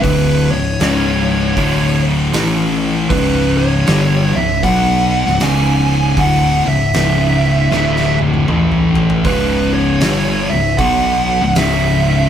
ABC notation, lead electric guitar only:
X:1
M:4/4
L:1/8
Q:"Swing" 1/4=78
K:C#m
V:1 name="Lead electric guitar"
B c4 z3 | B c2 e f2 g2 | f e4 z3 | B c2 e f2 e2 |]